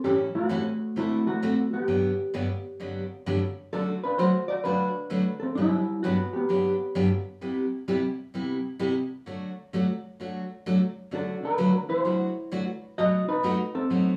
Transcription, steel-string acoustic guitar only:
0.04 0.26 A2 soft
0.04 0.26 E3 medium
0.04 0.26 G3 medium
0.04 0.27 C#4 medium
0.04 0.27 E4 medium
0.04 0.27 A4 medium
0.49 0.61 A2 medium
0.49 0.61 E3 medium
0.49 0.62 G3 medium
0.49 0.62 C#4 medium
0.49 0.62 E4 medium
0.49 0.62 A4 medium
0.96 1.18 D3 medium
0.96 1.18 A3 medium
0.96 1.18 C4 medium
0.96 1.19 F#4 medium
0.96 1.19 A4 medium
1.42 1.54 D3 medium
1.42 1.54 A3 medium
1.42 1.54 C4 medium
1.42 1.54 F#4 medium
1.42 1.54 A4 medium
1.88 2.10 G2 medium
1.88 2.10 D3 medium
1.88 2.10 F#3 medium
1.88 2.10 B3 medium
1.88 2.11 D4 medium
1.88 2.11 G4 medium
2.34 2.46 G2 medium
2.34 2.46 D3 medium
2.34 2.46 F#3 medium
2.34 2.46 B3 medium
2.34 2.46 D4 medium
2.34 2.46 G4 medium
2.80 3.02 G2 medium
2.80 3.03 D3 medium
2.80 3.03 F#3 medium
2.80 3.03 B3 medium
2.80 3.03 D4 medium
2.80 3.03 G4 medium
3.26 3.38 G2 medium
3.26 3.38 D3 medium
3.26 3.38 F#3 medium
3.26 3.39 B3 medium
3.26 3.39 D4 medium
3.26 3.39 G4 medium
3.73 3.95 D3 medium
3.73 3.95 F#3 soft
3.73 3.95 A3 medium
3.73 3.96 D4 medium
3.73 3.96 F#4 medium
4.19 4.31 D3 medium
4.19 4.31 F#3 medium
4.19 4.31 A3 medium
4.19 4.31 D4 medium
4.19 4.31 F#4 medium
4.65 4.87 D3 medium
4.65 4.87 F#3 medium
4.65 4.87 A3 medium
4.65 4.87 D4 medium
4.65 4.88 F#4 medium
5.10 5.22 D3 medium
5.10 5.23 F#3 medium
5.10 5.23 A3 medium
5.10 5.23 D4 medium
5.10 5.23 F#4 medium
5.57 5.80 G2 soft
5.57 5.80 D3 medium
5.57 5.80 F#3 medium
5.57 5.80 B3 medium
5.57 5.80 D4 medium
5.57 5.80 G4 medium
6.04 6.16 G2 medium
6.04 6.16 D3 medium
6.04 6.16 F#3 medium
6.04 6.16 B3 medium
6.04 6.16 D4 medium
6.04 6.16 G4 medium
6.49 6.72 G2 soft
6.49 6.72 D3 medium
6.49 6.72 F#3 medium
6.49 6.72 B3 medium
6.49 6.72 D4 medium
6.49 6.72 G4 medium
6.95 7.08 G2 medium
6.95 7.07 D3 medium
6.95 7.08 F#3 medium
6.95 7.08 B3 medium
6.95 7.08 D4 medium
6.95 7.08 G4 medium
7.41 7.64 C3 soft
7.41 7.64 G3 soft
7.41 7.64 B3 medium
7.41 7.65 E4 medium
7.41 7.65 G4 medium
7.88 8.00 C3 medium
7.88 8.00 G3 medium
7.88 8.00 B3 medium
7.88 8.00 E4 medium
7.88 8.01 G4 medium
8.34 8.57 C3 medium
8.34 8.57 G3 medium
8.34 8.57 B3 medium
8.34 8.57 E4 medium
8.34 8.57 G4 medium
8.79 8.92 C3 medium
8.79 8.92 G3 medium
8.79 8.92 B3 medium
8.79 8.92 E4 medium
8.79 8.93 G4 medium
9.26 9.49 D3 medium
9.26 9.49 F#3 medium
9.26 9.50 A3 medium
9.26 9.50 D4 medium
9.26 9.50 F#4 medium
9.73 9.85 D3 medium
9.73 9.86 F#3 medium
9.73 9.86 A3 medium
9.73 9.86 D4 medium
9.73 9.86 F#4 medium
10.20 10.42 D3 medium
10.20 10.43 F#3 medium
10.20 10.43 A3 medium
10.20 10.43 D4 medium
10.20 10.43 F#4 medium
10.66 10.78 D3 medium
10.66 10.78 F#3 medium
10.66 10.78 A3 medium
10.66 10.78 D4 medium
10.66 10.79 F#4 medium
11.11 11.34 D3 medium
11.11 11.34 F#3 medium
11.11 11.35 A3 medium
11.11 11.35 D4 medium
11.11 11.35 F#4 medium
11.58 11.70 D3 medium
11.58 11.70 F#3 medium
11.58 11.71 A3 medium
11.58 11.70 D4 medium
11.58 11.71 F#4 medium
12.04 12.27 D3 medium
12.04 12.27 F#3 medium
12.04 12.27 A3 medium
12.04 12.28 D4 medium
12.04 12.28 F#4 medium
12.51 12.63 D3 medium
12.51 12.63 F#3 medium
12.51 12.64 A3 medium
12.51 12.64 D4 medium
12.51 12.64 F#4 medium
12.99 13.21 B2 medium
12.99 13.21 F#3 medium
12.99 13.21 A3 soft
12.99 13.21 D#4 medium
12.99 13.21 F#4 medium
13.43 13.56 B2 medium
13.43 13.56 F#3 medium
13.43 13.56 A3 medium
13.43 13.56 D#4 medium
13.43 13.56 F#4 medium
13.90 14.13 B2 medium
13.90 14.13 F#3 medium
13.90 14.13 A3 medium
13.90 14.13 D#4 medium
13.90 14.13 F#4 medium

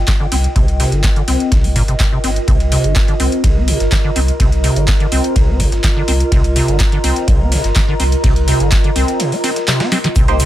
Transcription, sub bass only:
0.32 0.47 C2 medium
0.56 0.84 C2 loud
0.92 1.20 G1 medium
1.28 1.35 C2 loud
1.52 1.80 C2 medium
1.88 1.95 G1 loud
2.24 2.39 G1 medium
2.48 2.76 C2 loud
2.84 3.12 G1 medium
3.20 3.27 C2 loud
3.44 3.72 C2 medium
3.80 3.87 G1 loud
4.16 4.31 C2 medium
4.40 4.68 C2 loud
4.76 5.04 G1 medium
5.12 5.19 C2 loud
5.36 5.64 C2 medium
5.72 5.79 G1 loud
6.08 6.23 C2 medium
6.32 6.60 C2 loud
6.68 6.96 G1 medium
7.04 7.11 C2 loud
7.28 7.56 C2 loud
7.64 7.71 G1 loud
8.00 8.15 C2 medium
8.24 8.52 C2 loud
8.60 8.88 G1 medium
8.96 9.03 C2 loud
10.16 10.44 C2 loud

